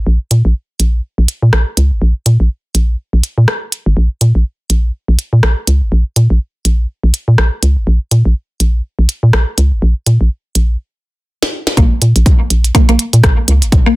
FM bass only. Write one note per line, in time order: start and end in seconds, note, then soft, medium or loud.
0.07 0.18 A#1 loud
0.31 0.43 A#2 medium
0.45 0.53 A#1 medium
0.80 1.00 A#1 medium
1.18 1.27 A#1 medium
1.42 1.51 A#2 medium
1.53 1.64 A#1 medium
1.77 1.93 C#2 loud
1.91 2.00 G#1 medium
2.02 2.13 A#1 loud
2.26 2.38 A#2 medium
2.40 2.49 A#1 medium
2.75 2.96 A#1 medium
3.13 3.22 A#1 medium
3.38 3.46 A#2 medium
3.86 3.95 G#1 loud
3.97 4.08 A#1 loud
4.21 4.33 A#2 medium
4.35 4.44 A#1 medium
4.70 4.91 A#1 medium
5.08 5.17 A#1 medium
5.33 5.41 A#2 medium
5.43 5.55 A#1 medium
5.67 5.83 C#2 loud
5.82 5.90 G#1 medium
5.92 6.03 A#1 loud
6.16 6.28 A#2 medium
6.30 6.39 A#1 medium
6.65 6.86 A#1 medium
7.03 7.12 A#1 medium
7.28 7.36 A#2 medium
7.38 7.50 A#1 medium
7.63 7.78 C#2 loud
7.77 7.85 G#1 medium
7.87 7.99 A#1 loud
8.11 8.23 A#2 medium
8.25 8.34 A#1 medium
8.60 8.81 A#1 medium
8.99 9.07 A#1 medium
9.23 9.32 A#2 medium
9.33 9.45 A#1 medium
9.58 9.73 C#2 loud
9.72 9.80 G#1 medium
9.82 9.94 A#1 loud
10.07 10.18 A#2 medium
10.21 10.29 A#1 medium
10.55 10.76 A#1 medium
11.77 11.89 A#1 loud
12.02 12.13 A#2 medium
12.16 12.24 A#1 medium
12.50 12.71 A#1 medium
12.89 12.97 A#1 medium
13.13 13.22 A#2 medium
13.24 13.35 A#1 medium
13.48 13.63 C#2 loud
13.62 13.71 G#1 medium
13.72 13.84 A#1 loud